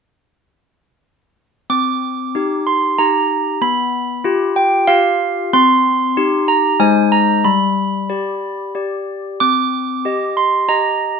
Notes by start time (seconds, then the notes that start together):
1.70 C4 D6
2.35 D#4 G4
2.67 C6
2.99 D#4 G4 A#5
3.61 B3 B5
4.24 F4 G4
4.56 G5
4.88 F4 G4 F5
5.53 C4 C6
6.17 D#4 G4
6.48 A#5
6.80 G#3 D#4 C5 G#5
7.12 A#5
7.45 G3 B5
8.10 G4 D5
8.75 G4 D5
9.40 C4 D6
10.05 G4 D#5
10.37 C6
10.69 G4 D#5 A#5